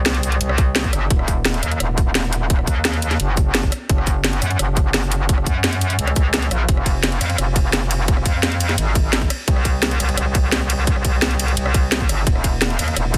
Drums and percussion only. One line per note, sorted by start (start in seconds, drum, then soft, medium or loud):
0.06 snare loud
0.06 closed hi-hat medium
0.15 closed hi-hat soft
0.23 closed hi-hat medium
0.23 shaker medium
0.32 closed hi-hat soft
0.41 closed hi-hat medium
0.49 cross-stick medium
0.58 kick loud
0.58 closed hi-hat medium
0.58 shaker medium
0.76 snare loud
0.76 closed hi-hat medium
0.84 kick medium
0.84 shaker soft
0.93 cross-stick soft
0.93 closed hi-hat medium
0.93 shaker medium
1.10 kick loud
1.10 closed hi-hat medium
1.19 cross-stick soft
1.28 kick medium
1.28 closed hi-hat medium
1.28 shaker medium
1.45 snare loud
1.45 closed hi-hat medium
1.54 closed hi-hat soft
1.63 cross-stick soft
1.63 closed hi-hat medium
1.63 shaker medium
1.72 closed hi-hat soft
1.80 cross-stick medium
1.80 closed hi-hat medium
1.98 kick loud
1.98 closed hi-hat medium
1.98 shaker medium
2.15 snare loud
2.15 closed hi-hat medium
2.24 shaker soft
2.33 closed hi-hat medium
2.33 shaker medium
2.50 kick loud
2.50 closed hi-hat medium
2.59 cross-stick soft
2.67 kick medium
2.67 closed hi-hat medium
2.67 shaker medium
2.85 snare loud
2.85 closed hi-hat loud
2.94 closed hi-hat soft
3.02 closed hi-hat medium
3.02 shaker medium
3.11 snare soft
3.11 closed hi-hat soft
3.20 closed hi-hat medium
3.37 kick loud
3.37 closed hi-hat medium
3.37 shaker medium
3.55 snare loud
3.55 closed hi-hat medium
3.63 kick medium
3.63 shaker soft
3.72 cross-stick soft
3.72 closed hi-hat medium
3.72 shaker medium
3.89 kick loud
3.89 closed hi-hat medium
3.98 cross-stick soft
4.07 kick medium
4.07 closed hi-hat medium
4.07 shaker medium
4.24 snare loud
4.24 closed hi-hat loud
4.33 closed hi-hat soft
4.42 cross-stick soft
4.42 closed hi-hat medium
4.42 shaker medium
4.51 closed hi-hat soft
4.59 cross-stick medium
4.59 closed hi-hat loud
4.77 kick loud
4.77 closed hi-hat medium
4.77 shaker medium
4.94 snare loud
4.94 closed hi-hat loud
5.03 shaker soft
5.12 closed hi-hat medium
5.12 shaker medium
5.29 kick loud
5.29 closed hi-hat loud
5.38 cross-stick soft
5.46 kick medium
5.46 closed hi-hat medium
5.46 shaker medium
5.64 snare loud
5.64 closed hi-hat loud
5.73 closed hi-hat soft
5.81 closed hi-hat medium
5.81 shaker medium
5.90 closed hi-hat soft
5.90 shaker soft
5.99 closed hi-hat loud
6.07 cross-stick medium
6.07 closed hi-hat soft
6.16 kick loud
6.16 closed hi-hat medium
6.16 shaker medium
6.34 snare loud
6.34 closed hi-hat loud
6.42 closed hi-hat soft
6.42 shaker soft
6.51 cross-stick soft
6.51 closed hi-hat medium
6.51 shaker medium
6.69 kick loud
6.69 closed hi-hat loud
6.77 cross-stick soft
6.86 kick medium
6.86 closed hi-hat medium
6.86 ride bell medium
6.86 shaker medium
7.03 snare loud
7.03 closed hi-hat loud
7.12 closed hi-hat soft
7.21 cross-stick soft
7.21 closed hi-hat medium
7.21 ride bell medium
7.21 shaker medium
7.30 closed hi-hat soft
7.38 cross-stick medium
7.38 closed hi-hat loud
7.56 kick loud
7.56 closed hi-hat medium
7.56 ride bell medium
7.56 shaker medium
7.73 snare loud
7.73 closed hi-hat medium
7.82 shaker soft
7.91 closed hi-hat medium
7.91 ride bell medium
7.91 shaker medium
8.08 kick loud
8.08 closed hi-hat loud
8.17 cross-stick soft
8.26 kick medium
8.26 closed hi-hat medium
8.26 ride bell medium
8.26 shaker medium
8.43 snare loud
8.43 closed hi-hat loud
8.52 closed hi-hat soft
8.60 closed hi-hat medium
8.60 ride bell medium
8.60 shaker medium
8.69 snare soft
8.69 closed hi-hat soft
8.78 closed hi-hat loud
8.95 kick loud
8.95 closed hi-hat medium
8.95 ride bell medium
8.95 shaker medium
9.13 snare loud
9.13 closed hi-hat medium
9.22 kick medium
9.22 shaker soft
9.30 cross-stick medium
9.30 closed hi-hat medium
9.30 ride bell medium
9.30 shaker medium
9.48 kick loud
9.48 closed hi-hat medium
9.56 cross-stick soft
9.65 kick medium
9.65 closed hi-hat medium
9.65 ride bell medium
9.65 shaker medium
9.83 snare loud
9.83 closed hi-hat medium
9.91 closed hi-hat soft
10.00 cross-stick soft
10.00 closed hi-hat medium
10.00 ride bell medium
10.00 shaker medium
10.09 closed hi-hat soft
10.17 cross-stick medium
10.17 closed hi-hat medium
10.35 kick loud
10.35 closed hi-hat medium
10.35 ride bell medium
10.35 shaker medium
10.52 snare loud
10.52 closed hi-hat medium
10.61 shaker soft
10.70 closed hi-hat medium
10.70 ride bell medium
10.70 shaker medium
10.87 kick loud
10.87 closed hi-hat medium
10.96 cross-stick soft
11.05 kick medium
11.05 closed hi-hat medium
11.05 ride bell medium
11.05 shaker medium
11.22 snare loud
11.22 closed hi-hat medium
11.31 closed hi-hat soft
11.39 closed hi-hat medium
11.39 ride bell medium
11.39 shaker medium
11.48 closed hi-hat soft
11.57 closed hi-hat medium
11.66 cross-stick medium
11.74 kick loud
11.74 closed hi-hat medium
11.74 ride bell medium
11.74 shaker medium
11.92 snare loud
11.92 closed hi-hat medium
12.01 kick medium
12.01 shaker soft
12.09 cross-stick soft
12.09 closed hi-hat medium
12.09 ride bell medium
12.09 shaker medium
12.27 kick loud
12.27 closed hi-hat medium
12.36 cross-stick soft
12.44 kick medium
12.44 closed hi-hat medium
12.44 ride bell medium
12.44 shaker medium
12.62 snare loud
12.62 closed hi-hat loud
12.70 closed hi-hat soft
12.79 cross-stick soft
12.79 closed hi-hat medium
12.79 ride bell medium
12.79 shaker medium
12.88 closed hi-hat soft
12.96 cross-stick medium
12.96 closed hi-hat medium
13.14 kick loud
13.14 closed hi-hat medium
13.14 ride bell medium
13.14 shaker medium